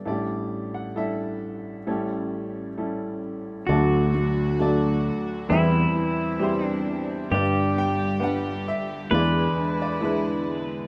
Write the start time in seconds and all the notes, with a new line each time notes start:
0.05 A1 A2 G3 D4 E4 G4 A4 D5
0.74 F#5
0.96 G3 D4 E4 A4 E5
1.87 A1 A2 G3 C#4 E4 G4 A4 C#5
2.77 G3 C#4 E4 A4
3.67 D2 D3 F#3 A3 D4 F#4 A4 D5
4.15 A3
4.59 F#3 A3 D4 F#4 A4 D5
5.49 E2 C3 E3 G3 C4 E4 B4 E5
5.96 E4
6.39 G3 C4 E4 G4 C5
6.66 D4
7.30 G1 G2 D3 G3 D4 G4 B4 D5
7.34 B4
7.76 B3 G5
8.20 G3 B3 D4 B4 F#5
8.68 E5
9.10 E2 E3 G#3 D4 E4 B4 D5
9.15 G#4
9.56 D4
9.82 D5
10.01 G#3 B3 D4 E4 G#4 B4
10.05 B4